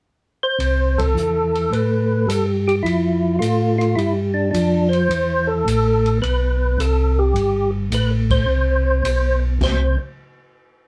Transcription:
0.43 C5
0.59 C2, ride
0.98 A4, kick, ride
1.15 E2, hi-hat pedal
1.55 ride
1.71 A2 B4, ride
2.27 G2 A4, hi-hat pedal, ride
2.68 G4, ride
2.83 F2 E4, ride
3.39 A2 F4, hi-hat pedal, ride
3.78 F4, ride
3.96 G2 E4, ride
4.34 D4
4.51 F2 D4, hi-hat pedal, ride
4.89 C5
4.93 ride
5.09 E2, ride
5.47 A4
5.65 A1, hi-hat pedal, ride
6.06 ride
6.22 B1 B4, ride
6.78 C2 A4, hi-hat pedal, ride
7.19 G4
7.34 G1, ride
7.90 A1 B4, hi-hat pedal, ride
8.30 C5, kick, ride
8.46 C2
9.03 B1, hi-hat pedal, ride
9.61 C2 C5, kick, snare, crash

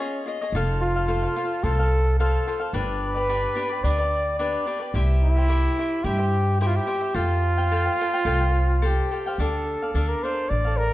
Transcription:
Already playing: C#4
0.00 F4 G#4 C#5 D#5
0.26 F4 G#4 C#5 D#5
0.41 G#4 C#5 D#5
0.52 F1 F4 A4 C5 F5
0.81 F4
0.96 A4 C5 F5
1.08 F4 A4 C5 F5
1.22 A4 C5 F5
1.36 F4 A4 C5 F5
1.64 C2 F4 A4 C5 F5
1.79 A4 C5 F5
2.19 F4 A4 C5 F5
2.47 F4 A4 C5 F5
2.60 A4 C5 F5
2.73 G1 D4 G4 B4 D5
3.06 B4
3.14 G4 B4 D5
3.29 D4 G4 B4 D5
3.55 D4 G4 B4 D5
3.69 G4 B4 D5
3.84 D2 D4 G4 B4 D5
3.98 G4 B4 D5
4.39 D4 G4 B4 D5
4.66 D4 G4 B4 D5
4.79 G4 B4 D5
4.94 C2 E4 G4 C5 E5
5.24 E4
5.37 G4 C5 E5
5.48 E4 G4 C5 E5
5.79 E4 G4 C5 E5
6.04 G2 E4 G4 C5 E5
6.18 G4 C5 E5
6.61 E4 G4 C5 E5
6.67 F4
6.76 G4
6.87 E4 G4 C5 E5
7.01 G4 C5 E5
7.14 F2 F4 A4 C5 F5 G5
7.58 C5 F5 G5
7.71 A4 C5 F5 G5
7.85 C5 F5 G5
8.01 A4 C5 F5 G5
8.13 C5 F5 G5
8.25 C2 A4 C5 F5 G5
8.40 C5 F5 G5
8.82 G4 A4 C5 F5 G5
9.11 A4 C5 F5 G5
9.26 C5 F5 G5
9.38 D2 D4 A4 D5 F5
9.82 A4 D5 F5
9.94 D2 D4 A4 D5 F5
10.09 A#4
10.23 D4 A4 C5 D5 F5
10.50 A1 D5
10.65 A4 D5 F5
10.78 A#4

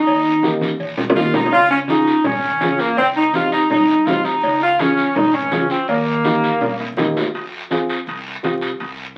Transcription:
Already playing: D#4
0.07 D#2, cowbell, high conga, long guiro
0.43 A#3 D#4 G4, high conga, short guiro
0.61 high conga, short guiro
0.80 A#1, cowbell, long guiro
0.97 A#1, low conga
1.10 low conga
1.16 D#2 A#3 D#4 F4 G4, low timbale, short guiro
1.34 D#4, low conga, short guiro
1.46 low conga
1.52 C#2 F4, cowbell, high conga, long guiro
1.71 C#4
1.88 C#4 D#4 F4 G#4, high conga, short guiro
2.07 short guiro
2.24 G#1 C#4, cowbell, high conga, low conga, long guiro
2.43 G#1
2.61 C#2 C#4 F4 G#4, high conga, low timbale, short guiro
2.79 A#3, short guiro
2.97 C2 C4, cowbell, high conga, long guiro
3.15 D#4
3.33 C4 D#4 F4 G4, high conga, short guiro
3.52 D#4, short guiro
3.70 G2 D#4, cowbell, high conga, low conga, long guiro
3.89 G2
4.06 C2 C4 D#4 F4 G4, high conga, low timbale, short guiro
4.25 D#4, short guiro
4.43 C#2, cowbell, high conga, long guiro
4.62 F4
4.79 C#4 F4 G#4, high conga, short guiro
4.98 short guiro
5.16 G#1 D#4, cowbell, high conga, low conga, long guiro
5.34 G#1 C#4
5.52 C#2 C#4 F4 G#4, high conga, low timbale, short guiro
5.70 C4, short guiro
5.88 D#2 A#3, cowbell, high conga, long guiro
6.25 A#3 D#4 G4, high conga, short guiro
6.44 short guiro
6.61 A#1, cowbell, high conga, low conga, long guiro
6.80 A#1, high timbale
6.97 D#2 A#3 D#4 G4, high conga, low conga, high timbale, short guiro
7.17 low timbale, short guiro
7.34 F2, high conga, high timbale, long guiro
7.71 C4 F4 G#4, high conga, high timbale, short guiro
7.89 high timbale, short guiro
8.07 C2, high conga, high timbale, long guiro
8.43 C2 C4 F4 G4, high conga, high timbale, short guiro
8.61 high timbale, short guiro
8.80 C2, high conga, high timbale, long guiro

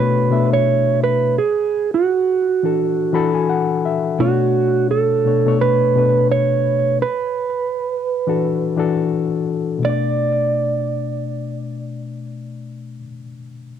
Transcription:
Already playing: B2 A3 D4 F#4 C#5
0.00 B4
0.30 B2 A3 D4 E5
0.53 C#5
1.03 B4
1.38 G#4
1.94 F#4
2.63 E3 D4 F#4 A4
3.13 E3 D4 F#4 A4 B5
3.35 G#5
3.49 F#5
3.85 E5
4.19 B2 A3 C#4 F#4 C#5
4.27 D4
4.91 A4
5.24 B2 A3 D4 C#5
5.45 B2 A3 D4 C#5
5.61 B4
5.96 B2 A3 D4 B4
6.32 C#5
7.02 B4
8.27 E3 D4 F#4 A4
8.77 E3 D4 F#4 A4
9.79 B2 A3
9.85 D4 D5
9.89 D5

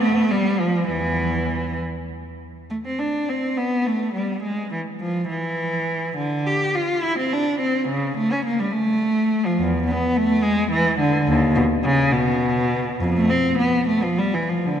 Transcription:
0.01 A3
0.30 G3
0.60 F3
0.88 E2 E3
2.70 A3
2.86 C4
2.99 D4
3.29 C4
3.57 B3
3.86 A3
4.14 G3
4.44 G#3
4.72 E3
5.01 F3
5.28 E3
6.18 D3
6.47 G4
6.75 F4
7.04 E4
7.18 C4
7.33 D4
7.60 C4
7.89 C#3
8.17 A3
8.32 C#4
8.45 A#3
8.59 G3
8.72 A3
9.46 F3
9.60 E2
9.88 B3
10.17 A3
10.43 G#3
10.71 E3
10.99 D3
11.29 D#2
11.56 B2
11.84 C#3
12.12 B2
13.00 F2
13.16 A3
13.29 C4
13.58 B3
13.87 A3
14.03 F3
14.18 G3
14.34 E3
14.49 F3
14.66 D3

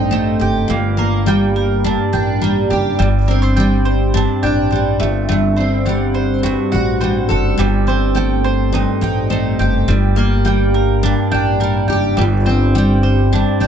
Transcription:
Already playing: A1 G2 G3 C4 D#4 C5 G5
0.11 A3 C5
0.40 F#1 G4 G5
0.68 G1 G2 A#3
0.97 A#3 A#4
1.26 G3 G5
1.56 A#4
1.84 G2 D4
2.13 A1 D4 G5
2.42 G3 A#4
2.70 F#1 G4 G5
2.99 G1 G2 G3
3.28 C4 A#4
3.42 C5
3.56 G3 G5
3.85 C5
4.14 G2 D4
4.43 A1 D4 G5
4.71 G3 C5
5.00 G1 G2 A3
5.29 G2 A3
5.56 C4 C5
5.86 G3 F#5
6.15 C5
6.43 G2 F#4
6.72 A1 F#4 F#5
7.01 G3 C5
7.29 F#1 A4 F#5
7.58 G1 G2 G3
7.87 C4 C5
8.15 A3 G5
8.44 C5
8.72 G2 D#4
9.01 A1 D#4 G5
9.30 A3 C5
9.59 F#1 G4 G5
9.88 G1 G2 G3
10.16 A#3 A#4
10.45 G3 G5
10.74 A#4
11.03 G2 D4
11.32 A1 D4 G5
11.60 G3 A#4
11.88 F#1 G4 G5
12.17 G1 G2 G3
12.46 C4 C5
12.75 G3 G5
13.03 C5
13.33 G2 D4
13.60 A1 D4 G5

